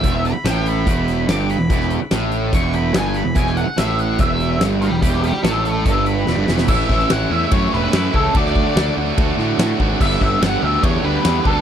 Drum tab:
CC |----------------|----------------|----------------|----------------|
RD |----------------|----------------|----------------|----------------|
HH |x-x-x-x-x-x-x-x-|x-x-x-x-x-x-x-x-|x-x-x-x-x-x-x-x-|x-x-x-x-x-x-----|
SD |----o-------o---|-o--o-------o---|-o--o-------o---|-o--o-------o-oo|
BD |o-------o-------|o-------o-------|o-------o-------|o-------o-------|

CC |x---------------|----------------|x---------------|
RD |----b---b---b---|b---b---b---b---|----b---b---b---|
HH |----------------|----------------|----------------|
SD |---oo-----o-o---|-o--o-----o-o---|-o--o-------o---|
BD |o-o-----o-----o-|o-o-----o-----o-|o-o-----o-----o-|